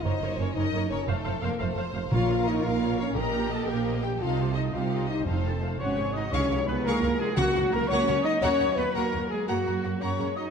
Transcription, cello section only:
\new Staff \with { instrumentName = "Cello section" } { \clef bass \time 6/8 \key bes \minor \tempo 4. = 115 << { r2. | r2. | r2. | r2. |
r2. | r4. des'4 ees'8 | \key des \mixolydian des'4 ces'8 bes4 aes8 | ges4 bes8 des'4 ees'8 |
des'4 ces'8 bes4 aes8 | ges4. des'4 ees'8 | } \\ { ges,8 ges,8 ges,8 ges,8 ges,8 ges,8 | f,8 f,8 f,8 f,8 f,8 f,8 | bes,4. bes,4. | bes,4. bes,4. |
c4. c4. | f,4. aes,4. | r2. | r2. |
r2. | r2. | } >> }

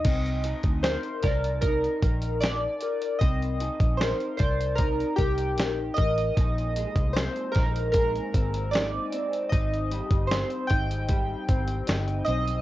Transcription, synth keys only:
\new Staff \with { instrumentName = "Synth keys" } { \time 4/4 \key c \minor \tempo 4 = 76 ees''4 c''8 bes'8 bes'4 d''4 | ees''4 c''8 c''8 bes'8 g'4 ees''8~ | ees''4 c''8 bes'8 bes'4 d''4 | ees''4 c''8 g''2 ees''8 | }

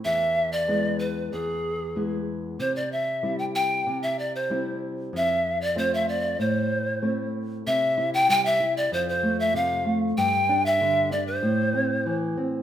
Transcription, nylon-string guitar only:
\new Staff \with { instrumentName = "Nylon-string guitar" } { \time 2/4 \key c \major \tempo 4 = 95 e,4 <gis b e'>4 | e,4 <gis b e'>4 | c4 <g c' e'>4 | c4 <g c' e'>4 |
f,4 <a c' f'>4 | a,4 <a c' e'>4 | c8 e'8 g8 e'8 | f,8 a8 c8 a8 |
g,8 d'8 d8 d'8 | a,8 c'8 e8 c'8 | }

